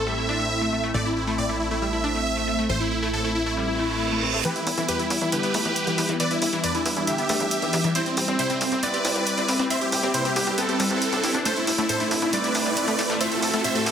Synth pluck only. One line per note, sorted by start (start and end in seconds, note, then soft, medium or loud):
0.07 0.10 G3 medium
0.18 0.21 E4 medium
0.29 0.34 D4 loud
0.40 0.43 A3 medium
0.62 0.70 A3 medium
0.73 0.81 A3 medium
0.84 0.92 A3 medium
0.94 1.00 A3 loud
1.27 1.33 A3 loud
1.38 1.44 A2 medium
1.49 1.57 A3 medium
1.71 1.74 A3 medium
1.82 1.85 G3 medium
1.93 1.96 E4 medium
2.04 2.09 D4 loud
2.15 2.18 A3 medium
2.37 2.45 A3 medium
2.48 2.56 A3 medium
2.59 2.67 A3 loud
2.70 2.75 A3 medium
3.02 3.08 A3 loud
3.13 3.19 A2 medium
3.24 3.32 A3 medium
3.46 3.49 A3 medium
3.57 3.60 G3 medium
3.68 3.71 E4 medium
3.79 3.82 A3 medium
3.90 3.95 A3 medium
4.12 4.20 A3 medium
4.23 4.31 C4 medium
4.34 4.37 A4 loud
4.45 4.50 E3 loud
4.78 4.83 E3 loud
4.89 4.94 E2 medium
5.00 5.08 E3 medium
5.21 5.25 E3 medium
5.32 5.36 D3 medium
5.43 5.47 B3 medium
5.54 5.60 A3 loud
5.65 5.68 E3 medium
5.87 5.95 E3 medium
5.98 6.06 E3 medium
6.09 6.17 E3 medium
6.20 6.25 E3 loud
6.53 6.58 E3 loud
6.64 6.69 E2 medium
6.75 6.83 E3 medium
6.97 7.00 E3 medium
7.08 7.11 D3 medium
7.19 7.22 B3 medium
7.30 7.35 A3 loud
7.40 7.44 E3 medium
7.62 7.70 E3 medium
7.73 7.81 E3 medium
7.84 7.92 E3 loud
7.95 8.01 C4 loud
8.28 8.33 C4 loud
8.39 8.44 C3 medium
8.50 8.58 C4 medium
8.72 8.75 C4 medium
8.83 8.86 B3 medium
8.94 8.97 G4 medium
9.05 9.10 E4 loud
9.16 9.19 C4 medium
9.38 9.46 C4 medium
9.49 9.57 C4 medium
9.59 9.67 C4 loud
9.70 9.76 C4 loud
10.03 10.09 C4 loud
10.14 10.20 C3 medium
10.25 10.33 C4 medium
10.47 10.50 C4 medium
10.58 10.61 B3 medium
10.69 10.72 G4 medium
10.80 10.88 G3 loud
10.91 10.96 E4 medium
11.12 11.16 D4 medium
11.24 11.32 E4 medium
11.34 11.40 D4 loud
11.45 11.51 A3 loud
11.78 11.84 A3 loud
11.89 11.95 A2 medium
12.00 12.08 A3 medium
12.22 12.25 A3 medium
12.33 12.36 G3 medium
12.44 12.47 E4 medium
12.55 12.60 D4 loud
12.66 12.69 A3 medium
12.88 12.96 A3 medium
12.99 13.07 A3 medium
13.10 13.18 A3 loud
13.21 13.26 A3 loud
13.54 13.59 A3 loud
13.64 13.70 A2 medium
13.76 13.84 A3 medium